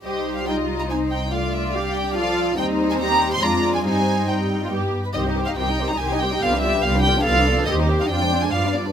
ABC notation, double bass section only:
X:1
M:3/4
L:1/8
Q:1/4=142
K:Cm
V:1 name="Double bass section" clef=bass
C,,6- | C,,6 | E,,4 F,,2 | G,,4 G,, z |
C,,2 C,,2 C,,2 | C,,2 C,,2 C,,2 | E,,2 F,,2 G,,2 |]